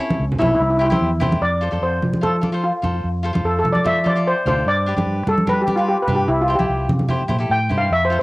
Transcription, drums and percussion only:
0.10 high conga medium
0.32 low conga medium
0.42 high conga medium
0.42 low conga medium
0.92 high conga medium
1.21 low conga medium
1.32 high conga medium
2.02 low conga medium
2.13 high conga medium
2.23 low conga medium
2.43 high conga medium
2.84 low conga medium
3.35 high conga medium
3.65 low conga medium
3.75 high conga medium
3.86 low conga medium
4.06 high conga medium
4.47 low conga medium
4.98 high conga medium
5.27 low conga medium
5.38 high conga medium
5.47 low conga medium
5.68 high conga medium
6.07 low conga medium
6.59 high conga medium
6.89 high conga medium
6.89 low conga medium
6.99 high conga medium
7.09 low conga medium
7.29 high conga medium
7.29 low conga medium
7.71 low conga medium

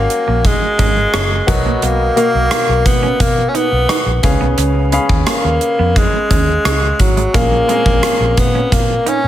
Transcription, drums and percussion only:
0.10 closed hi-hat medium
0.45 kick medium
0.45 closed hi-hat medium
0.79 kick medium
0.79 closed hi-hat medium
1.14 cross-stick loud
1.14 closed hi-hat medium
1.48 kick medium
1.48 closed hi-hat medium
1.82 closed hi-hat medium
2.17 closed hi-hat medium
2.51 cross-stick medium
2.51 closed hi-hat medium
2.86 kick medium
2.86 closed hi-hat medium
3.20 kick medium
3.20 closed hi-hat medium
3.55 closed hi-hat medium
3.89 cross-stick loud
3.89 closed hi-hat medium
4.23 kick medium
4.23 closed hi-hat medium
4.58 closed hi-hat medium
4.92 closed hi-hat medium
5.09 kick medium
5.27 cross-stick loud
5.27 closed hi-hat medium
5.61 closed hi-hat medium
5.96 kick medium
5.96 closed hi-hat medium
6.31 kick medium
6.31 closed hi-hat medium
6.65 cross-stick loud
6.65 closed hi-hat medium
6.99 kick medium
6.99 closed hi-hat medium
7.17 closed hi-hat soft
7.34 kick loud
7.34 closed hi-hat medium
7.69 closed hi-hat medium
7.86 kick medium
8.03 cross-stick loud
8.03 closed hi-hat medium
8.37 kick medium
8.37 closed hi-hat medium
8.72 kick medium
8.72 closed hi-hat medium
9.07 closed hi-hat medium

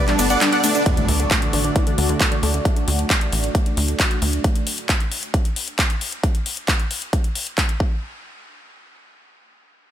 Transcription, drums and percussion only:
0.08 clap soft
0.08 closed hi-hat medium
0.19 open hi-hat loud
0.19 ride medium
0.19 shaker medium
0.30 closed hi-hat medium
0.30 shaker soft
0.41 clap loud
0.41 closed hi-hat medium
0.41 shaker soft
0.52 closed hi-hat medium
0.64 open hi-hat medium
0.64 ride medium
0.64 shaker medium
0.75 closed hi-hat medium
0.75 shaker soft
0.86 kick loud
0.86 closed hi-hat medium
0.97 closed hi-hat medium
1.08 open hi-hat loud
1.20 closed hi-hat medium
1.31 kick loud
1.31 clap loud
1.31 closed hi-hat medium
1.42 closed hi-hat medium
1.53 open hi-hat medium
1.64 closed hi-hat medium
1.76 kick loud
1.76 closed hi-hat medium
1.87 closed hi-hat medium
1.98 open hi-hat loud
2.09 closed hi-hat medium
2.20 kick loud
2.20 clap loud
2.20 closed hi-hat medium
2.32 closed hi-hat medium
2.43 open hi-hat medium
2.54 closed hi-hat medium
2.65 kick loud
2.65 closed hi-hat medium
2.76 closed hi-hat medium
2.88 open hi-hat loud
2.99 closed hi-hat medium
3.10 kick loud
3.10 clap loud
3.10 closed hi-hat medium
3.21 closed hi-hat medium
3.32 open hi-hat medium
3.44 closed hi-hat medium
3.55 kick loud
3.55 closed hi-hat medium
3.66 closed hi-hat soft
3.77 open hi-hat loud
3.88 closed hi-hat soft
4.00 kick loud
4.00 clap loud
4.00 closed hi-hat medium
4.11 closed hi-hat medium
4.22 open hi-hat medium
4.33 closed hi-hat soft
4.44 kick loud
4.44 closed hi-hat medium
4.56 closed hi-hat soft
4.67 open hi-hat loud
4.78 closed hi-hat soft
4.89 kick loud
4.89 clap loud
4.89 closed hi-hat medium
5.00 closed hi-hat soft
5.12 open hi-hat medium
5.23 closed hi-hat soft
5.34 kick loud
5.34 closed hi-hat medium
5.45 closed hi-hat soft
5.56 open hi-hat loud
5.68 closed hi-hat soft
5.79 kick loud
5.79 clap loud
5.79 closed hi-hat medium
5.90 closed hi-hat soft
6.01 open hi-hat medium
6.12 closed hi-hat soft
6.23 kick loud
6.23 closed hi-hat medium
6.35 closed hi-hat soft
6.46 open hi-hat loud
6.57 closed hi-hat soft
6.68 kick loud
6.68 clap loud
6.68 closed hi-hat medium
6.79 closed hi-hat soft
6.91 open hi-hat medium
7.02 closed hi-hat soft
7.13 kick loud
7.13 closed hi-hat medium
7.24 closed hi-hat soft
7.35 open hi-hat loud
7.47 closed hi-hat soft
7.58 kick loud
7.58 clap loud
7.58 closed hi-hat medium
7.69 closed hi-hat soft
7.80 kick loud

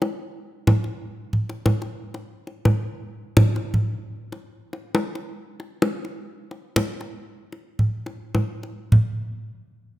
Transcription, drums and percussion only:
0.02 kendang high soft
0.67 kendang high medium
0.67 kendang low medium
0.84 kendang slap soft
1.33 kendang low soft
1.50 kendang slap soft
1.66 kendang high medium
1.66 kendang low medium
1.82 kendang slap soft
2.14 kendang slap soft
2.47 kendang slap soft
2.65 kendang high medium
2.65 kendang low medium
3.37 kendang high medium
3.37 kendang low medium
3.56 kendang slap soft
3.74 kendang low medium
4.32 kendang slap soft
4.73 kendang slap soft
4.95 kendang high medium
5.15 kendang slap soft
5.60 kendang slap soft
5.82 kendang high medium
6.05 kendang slap soft
6.51 kendang slap soft
6.76 kendang high medium
6.76 kendang low medium
7.01 kendang slap soft
7.52 kendang slap soft
7.79 kendang low medium
8.06 kendang slap soft
8.35 kendang high medium
8.35 kendang low soft
8.63 kendang slap soft
8.92 kendang low medium

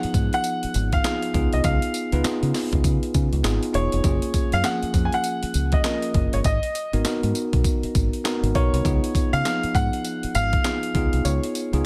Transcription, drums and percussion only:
0.03 closed hi-hat soft
0.14 kick medium
0.14 closed hi-hat medium
0.14 tambourine medium
0.33 closed hi-hat medium
0.44 closed hi-hat medium
0.44 tambourine medium
0.63 closed hi-hat medium
0.74 closed hi-hat medium
0.74 tambourine medium
0.92 kick medium
0.92 closed hi-hat soft
1.04 snare loud
1.04 clap medium
1.04 closed hi-hat medium
1.04 tambourine loud
1.22 closed hi-hat medium
1.34 kick medium
1.34 closed hi-hat medium
1.53 closed hi-hat medium
1.64 kick loud
1.64 closed hi-hat medium
1.64 tambourine medium
1.82 closed hi-hat medium
1.94 closed hi-hat medium
1.94 tambourine medium
2.12 closed hi-hat soft
2.24 snare loud
2.24 clap medium
2.24 closed hi-hat medium
2.24 tambourine loud
2.43 closed hi-hat soft
2.54 snare medium
2.54 open hi-hat medium
2.54 tambourine medium
2.73 kick loud
2.73 closed hi-hat medium
2.84 kick loud
2.84 closed hi-hat medium
2.84 tambourine medium
3.03 closed hi-hat medium
3.14 kick loud
3.14 closed hi-hat medium
3.14 tambourine medium
3.33 closed hi-hat soft
3.44 snare loud
3.44 clap medium
3.44 closed hi-hat medium
3.44 tambourine medium
3.63 closed hi-hat medium
3.74 closed hi-hat medium
3.92 closed hi-hat medium
4.04 kick loud
4.04 closed hi-hat medium
4.04 tambourine medium
4.22 closed hi-hat medium
4.34 kick medium
4.34 closed hi-hat medium
4.34 tambourine medium
4.52 closed hi-hat medium
4.64 snare loud
4.64 clap medium
4.64 closed hi-hat medium
4.64 tambourine loud
4.83 closed hi-hat medium
4.94 kick medium
4.94 closed hi-hat medium
4.94 tambourine medium
5.12 closed hi-hat medium
5.24 closed hi-hat medium
5.24 tambourine medium
5.43 closed hi-hat medium
5.54 closed hi-hat medium
5.54 tambourine medium
5.72 kick medium
5.72 closed hi-hat soft
5.84 snare loud
5.84 clap medium
5.84 closed hi-hat medium
5.84 tambourine loud
6.02 closed hi-hat medium
6.14 kick medium
6.14 closed hi-hat medium
6.33 closed hi-hat medium
6.44 kick loud
6.44 closed hi-hat medium
6.44 tambourine medium
6.63 closed hi-hat medium
6.75 closed hi-hat medium
6.75 tambourine medium
6.93 closed hi-hat soft
7.05 snare loud
7.05 clap medium
7.05 closed hi-hat medium
7.05 tambourine loud
7.23 closed hi-hat medium
7.35 closed hi-hat medium
7.35 tambourine medium
7.53 kick medium
7.53 closed hi-hat medium
7.64 kick loud
7.64 closed hi-hat medium
7.64 tambourine medium
7.83 closed hi-hat medium
7.95 kick loud
7.95 closed hi-hat medium
7.95 tambourine medium
8.13 closed hi-hat soft
8.25 snare loud
8.25 clap medium
8.25 closed hi-hat medium
8.25 tambourine loud
8.44 closed hi-hat medium
8.55 kick medium
8.55 closed hi-hat medium
8.74 closed hi-hat medium
8.85 kick loud
8.85 closed hi-hat medium
8.85 tambourine medium
9.04 closed hi-hat medium
9.15 kick loud
9.15 closed hi-hat medium
9.15 tambourine medium
9.34 closed hi-hat soft
9.45 snare loud
9.45 clap medium
9.45 closed hi-hat medium
9.45 tambourine loud
9.63 closed hi-hat soft
9.75 kick medium
9.75 closed hi-hat medium
9.75 tambourine medium
9.93 closed hi-hat medium
10.05 closed hi-hat medium
10.05 tambourine medium
10.23 closed hi-hat medium
10.35 closed hi-hat medium
10.35 tambourine medium
10.53 kick loud
10.53 closed hi-hat soft
10.64 snare loud
10.64 clap medium
10.64 closed hi-hat medium
10.64 tambourine loud
10.83 closed hi-hat medium
10.95 kick medium
10.95 closed hi-hat medium
11.13 closed hi-hat medium
11.25 closed hi-hat medium
11.25 tambourine medium
11.43 closed hi-hat medium
11.55 closed hi-hat medium
11.55 tambourine medium
11.73 closed hi-hat soft

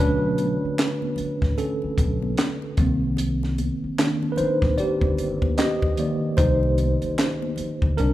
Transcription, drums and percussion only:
0.38 closed hi-hat medium
0.38 high conga medium
0.78 snare loud
0.78 clap medium
0.78 closed hi-hat medium
0.78 muted conga soft
1.02 muted conga soft
1.02 high conga medium
1.16 closed hi-hat medium
1.16 low conga medium
1.42 kick medium
1.42 snare soft
1.58 closed hi-hat medium
1.58 muted conga soft
1.82 muted conga soft
1.97 kick medium
1.97 closed hi-hat medium
1.97 high conga soft
2.22 high conga medium
2.37 snare loud
2.37 clap medium
2.37 closed hi-hat medium
2.37 high conga medium
2.62 muted conga soft
2.77 kick loud
2.77 closed hi-hat medium
2.77 low conga medium
3.17 closed hi-hat medium
3.17 muted conga soft
3.17 low conga medium
3.43 snare soft
3.43 muted conga soft
3.58 closed hi-hat medium
3.58 high conga medium
3.99 snare loud
3.99 clap medium
3.99 closed hi-hat medium
3.99 muted conga soft
4.22 muted conga soft
4.22 high conga medium
4.36 closed hi-hat medium
4.36 low conga medium
4.62 kick medium
4.62 snare soft
4.78 closed hi-hat medium
4.78 muted conga soft
5.01 kick medium
5.01 muted conga soft
5.17 closed hi-hat medium
5.17 high conga soft
5.42 kick medium
5.42 high conga medium
5.58 snare loud
5.58 clap medium
5.58 closed hi-hat medium
5.58 high conga medium
5.82 kick medium
5.82 muted conga soft
5.97 closed hi-hat medium
5.97 low conga medium
6.37 kick loud
6.37 closed hi-hat medium
6.37 muted conga soft
6.37 low conga medium
6.63 muted conga soft
6.78 closed hi-hat medium
6.78 high conga medium
7.02 closed hi-hat soft
7.18 snare loud
7.18 clap medium
7.18 closed hi-hat medium
7.42 muted conga soft
7.42 high conga medium
7.56 closed hi-hat medium
7.56 low conga medium
7.82 kick medium
7.98 closed hi-hat medium
7.98 muted conga soft

